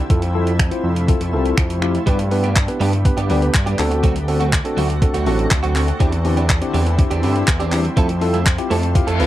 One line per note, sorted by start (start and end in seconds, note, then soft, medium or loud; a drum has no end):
0.00 2.03 E4 medium
0.10 0.71 F2 loud
0.10 2.05 C3 medium
0.10 2.05 F3 medium
0.10 2.05 A3 medium
0.10 0.21 C4 medium
0.10 0.21 E4 medium
0.10 0.21 F4 medium
0.10 0.21 A4 medium
0.10 kick loud
0.10 closed hi-hat medium
0.22 closed hi-hat medium
0.34 0.51 C4 medium
0.34 0.51 E4 medium
0.34 0.51 F4 medium
0.34 0.51 A4 medium
0.47 closed hi-hat soft
0.59 finger snap loud
0.59 kick loud
0.59 closed hi-hat medium
0.71 0.88 C4 medium
0.71 0.88 E4 medium
0.71 0.88 F4 medium
0.71 0.88 C5 medium
0.71 closed hi-hat medium
0.84 1.15 F2 medium
0.96 closed hi-hat medium
1.08 1.19 C4 medium
1.08 1.20 E4 medium
1.08 1.20 F4 medium
1.08 1.20 A4 medium
1.08 kick loud
1.08 closed hi-hat medium
1.21 1.34 F2 medium
1.21 closed hi-hat medium
1.33 1.53 C2 loud
1.33 1.55 C4 medium
1.33 1.55 E4 medium
1.33 1.55 F4 medium
1.33 1.55 A4 medium
1.45 closed hi-hat soft
1.58 1.99 F2 loud
1.58 finger snap loud
1.58 kick loud
1.58 closed hi-hat medium
1.70 closed hi-hat medium
1.82 1.93 C4 medium
1.82 1.93 E4 medium
1.82 1.93 F4 medium
1.82 1.93 G4 medium
1.82 finger snap medium
1.95 closed hi-hat soft
2.06 2.68 G2 loud
2.06 7.93 D3 medium
2.06 2.21 G3 medium
2.06 3.77 G3 medium
2.06 2.18 B3 medium
2.06 3.77 B3 medium
2.06 2.19 B3 medium
2.06 2.18 D4 medium
2.06 3.77 G4 medium
2.06 2.18 G4 medium
2.06 2.18 B4 medium
2.06 kick loud
2.06 closed hi-hat medium
2.19 muted clean electric guitar stroke soft
2.19 closed hi-hat medium
2.31 2.48 B3 medium
2.31 2.48 D4 medium
2.31 2.48 G4 medium
2.31 2.48 B4 medium
2.31 muted clean electric guitar stroke soft
2.31 open hi-hat medium
2.43 2.56 G3 soft
2.43 2.56 B3 medium
2.43 2.55 D4 medium
2.43 2.55 G4 medium
2.43 closed hi-hat soft
2.56 kick loud
2.56 clap loud
2.56 closed hi-hat medium
2.68 2.85 B3 medium
2.68 2.85 D4 medium
2.68 2.85 G4 medium
2.68 2.85 B4 medium
2.68 muted clean electric guitar stroke soft
2.68 closed hi-hat medium
2.80 3.11 G2 medium
2.80 2.95 G3 medium
2.80 2.93 B3 loud
2.80 2.92 D4 loud
2.80 2.91 G4 loud
2.80 open hi-hat medium
2.93 muted clean electric guitar stroke soft
2.93 closed hi-hat medium
3.05 3.16 B3 medium
3.05 3.16 D4 medium
3.05 3.16 G4 medium
3.05 3.17 B4 loud
3.05 muted clean electric guitar stroke soft
3.05 kick loud
3.05 closed hi-hat medium
3.17 3.31 G2 medium
3.17 3.28 G3 medium
3.17 3.29 B3 medium
3.17 3.29 D4 medium
3.17 3.29 G4 medium
3.17 closed hi-hat medium
3.29 3.50 D2 loud
3.29 3.44 G3 medium
3.29 3.52 B3 medium
3.29 3.42 B3 medium
3.29 3.52 D4 medium
3.29 3.41 D4 medium
3.29 3.52 G4 medium
3.29 3.40 G4 loud
3.29 3.52 B4 medium
3.29 open hi-hat medium
3.42 muted clean electric guitar stroke medium
3.42 closed hi-hat soft
3.54 3.75 G2 loud
3.54 muted clean electric guitar stroke soft
3.54 kick loud
3.54 clap loud
3.54 closed hi-hat medium
3.66 3.78 G3 medium
3.66 3.79 B3 medium
3.66 3.79 D4 medium
3.66 3.79 G4 medium
3.66 closed hi-hat medium
3.79 4.61 D2 loud
3.79 5.98 A3 medium
3.79 4.18 C4 medium
3.79 9.27 C4 medium
3.79 4.18 D4 medium
3.79 5.98 F#4 medium
3.79 4.18 F#4 medium
3.79 4.19 A4 loud
3.79 muted clean electric guitar stroke soft
3.79 clap medium
3.79 open hi-hat medium
3.91 muted clean electric guitar stroke medium
3.91 closed hi-hat soft
4.03 4.18 F#3 medium
4.03 4.16 A3 medium
4.03 4.15 C4 medium
4.03 4.14 F#4 medium
4.03 kick loud
4.03 closed hi-hat medium
4.16 muted clean electric guitar stroke soft
4.16 closed hi-hat medium
4.28 4.45 C4 medium
4.28 4.45 D4 medium
4.28 4.45 F#4 medium
4.28 4.45 A4 medium
4.28 muted clean electric guitar stroke soft
4.28 open hi-hat medium
4.40 4.52 F#3 medium
4.40 4.52 A3 medium
4.40 4.52 C4 medium
4.40 4.52 F#4 medium
4.40 closed hi-hat medium
4.53 kick loud
4.53 clap loud
4.53 closed hi-hat medium
4.65 4.82 C4 medium
4.65 4.82 D4 medium
4.65 4.82 F#4 medium
4.65 4.82 A4 medium
4.65 muted clean electric guitar stroke medium
4.65 closed hi-hat medium
4.77 5.08 D2 medium
4.77 4.92 F#3 medium
4.77 4.90 A3 medium
4.77 4.89 C4 medium
4.77 4.88 F#4 loud
4.77 open hi-hat medium
4.89 muted clean electric guitar stroke soft
4.89 closed hi-hat medium
5.02 5.13 C4 medium
5.02 5.13 D4 medium
5.02 5.13 F#4 medium
5.02 5.13 A4 loud
5.02 muted clean electric guitar stroke soft
5.02 kick loud
5.02 closed hi-hat medium
5.14 5.28 D2 medium
5.14 5.25 F#3 medium
5.14 5.26 A3 medium
5.14 5.26 C4 medium
5.14 5.25 F#4 medium
5.14 closed hi-hat medium
5.26 5.47 A1 loud
5.26 5.41 F#3 medium
5.26 5.39 A3 medium
5.26 5.49 C4 medium
5.26 5.38 C4 medium
5.26 5.49 D4 medium
5.26 5.49 F#4 medium
5.26 5.37 F#4 medium
5.26 5.49 A4 loud
5.26 open hi-hat medium
5.38 muted clean electric guitar stroke soft
5.38 closed hi-hat soft
5.51 5.92 D2 loud
5.51 muted clean electric guitar stroke soft
5.51 kick loud
5.51 clap loud
5.51 closed hi-hat medium
5.63 5.74 F#3 medium
5.63 5.75 A3 medium
5.63 5.75 C4 medium
5.63 5.75 F#4 medium
5.63 closed hi-hat medium
5.75 5.87 C4 medium
5.75 5.87 D4 medium
5.75 5.87 F#4 medium
5.75 5.87 A4 medium
5.75 muted clean electric guitar stroke soft
5.75 clap medium
5.75 open hi-hat medium
5.88 muted clean electric guitar stroke medium
5.88 closed hi-hat medium
6.00 6.62 E2 loud
6.00 6.15 E3 medium
6.00 7.95 G3 medium
6.00 6.11 C4 medium
6.00 6.12 C4 medium
6.00 6.11 D4 medium
6.00 6.12 D4 medium
6.00 7.95 E4 medium
6.00 6.11 E4 medium
6.00 6.12 G4 medium
6.00 6.11 G4 medium
6.00 kick loud
6.00 closed hi-hat medium
6.12 muted clean electric guitar stroke medium
6.12 closed hi-hat medium
6.25 6.41 C4 medium
6.25 6.42 D4 medium
6.25 6.42 E4 medium
6.25 6.42 G4 medium
6.25 muted clean electric guitar stroke soft
6.25 open hi-hat medium
6.37 6.49 E3 soft
6.37 6.49 C4 medium
6.37 6.49 D4 medium
6.37 6.48 G4 medium
6.37 closed hi-hat medium
6.50 kick loud
6.50 clap loud
6.50 closed hi-hat medium
6.61 6.78 C4 medium
6.61 6.78 D4 medium
6.61 6.78 E4 medium
6.61 6.79 G4 medium
6.61 muted clean electric guitar stroke soft
6.61 closed hi-hat medium
6.74 7.05 E2 loud
6.74 6.88 E3 medium
6.74 6.86 C4 medium
6.74 6.86 D4 loud
6.74 6.85 G4 medium
6.74 open hi-hat medium
6.86 muted clean electric guitar stroke medium
6.86 closed hi-hat medium
6.98 7.10 C4 medium
6.98 7.10 D4 medium
6.98 7.10 E4 medium
6.98 7.10 G4 medium
6.98 muted clean electric guitar stroke soft
6.98 kick loud
6.98 closed hi-hat medium
7.11 7.25 E2 medium
7.11 7.22 E3 soft
7.11 7.22 C4 medium
7.11 7.22 D4 medium
7.11 7.22 G4 medium
7.11 closed hi-hat medium
7.23 7.44 G2 loud
7.23 7.38 E3 medium
7.23 7.45 C4 medium
7.23 7.35 C4 medium
7.23 7.45 D4 medium
7.23 7.35 D4 medium
7.23 7.46 E4 medium
7.23 7.46 G4 loud
7.23 7.34 G4 medium
7.23 open hi-hat medium
7.35 muted clean electric guitar stroke soft
7.35 closed hi-hat soft
7.48 7.89 E2 medium
7.48 muted clean electric guitar stroke soft
7.48 kick loud
7.48 clap loud
7.48 closed hi-hat medium
7.60 7.71 E3 medium
7.60 7.72 C4 medium
7.60 7.72 D4 medium
7.60 7.72 G4 medium
7.60 closed hi-hat medium
7.72 7.83 C4 medium
7.72 7.83 D4 medium
7.72 7.84 E4 medium
7.72 7.84 G4 medium
7.72 muted clean electric guitar stroke soft
7.72 clap medium
7.72 open hi-hat medium
7.84 muted clean electric guitar stroke soft
7.84 closed hi-hat soft
7.97 8.58 F2 loud
7.97 9.27 F3 medium
7.97 8.11 A3 medium
7.97 9.27 A3 medium
7.97 8.08 C4 medium
7.97 8.09 C4 medium
7.97 8.08 E4 medium
7.97 8.09 E4 loud
7.97 9.27 F4 medium
7.97 8.08 F4 medium
7.97 8.08 A4 medium
7.97 8.08 A4 loud
7.97 kick loud
7.97 closed hi-hat medium
8.09 muted clean electric guitar stroke medium
8.09 closed hi-hat medium
8.21 8.38 C4 medium
8.21 8.38 E4 medium
8.21 8.38 F4 medium
8.21 8.38 A4 medium
8.21 muted clean electric guitar stroke soft
8.21 open hi-hat medium
8.33 8.46 A3 soft
8.33 8.46 C4 medium
8.33 8.45 E4 medium
8.33 8.45 A4 medium
8.33 closed hi-hat medium
8.46 kick loud
8.46 clap loud
8.46 closed hi-hat medium
8.58 8.75 C4 medium
8.58 8.75 E4 medium
8.58 8.75 F4 medium
8.58 8.75 G4 medium
8.58 muted clean electric guitar stroke soft
8.58 closed hi-hat medium
8.70 9.01 F2 medium
8.70 8.85 A3 medium
8.70 8.83 C4 medium
8.70 8.82 E4 medium
8.70 8.82 A4 medium
8.70 8.94 A5 medium
8.70 open hi-hat medium
8.83 muted clean electric guitar stroke soft
8.83 closed hi-hat medium
8.95 9.06 C4 medium
8.95 9.06 E4 medium
8.95 9.06 F4 medium
8.95 9.06 G4 loud
8.95 9.27 F5 medium
8.95 muted clean electric guitar stroke soft
8.95 kick loud
8.95 closed hi-hat medium
8.95 reverse cymbal medium
9.07 9.21 F2 medium
9.07 9.18 A3 medium
9.07 9.19 C4 medium
9.07 9.19 E4 medium
9.07 9.19 A4 medium
9.07 closed hi-hat medium
9.19 9.27 C2 loud
9.19 9.27 A3 medium
9.19 9.27 C4 medium
9.19 9.27 E4 medium
9.19 9.27 F4 medium
9.19 9.27 A4 medium
9.19 9.27 B4 medium
9.19 open hi-hat medium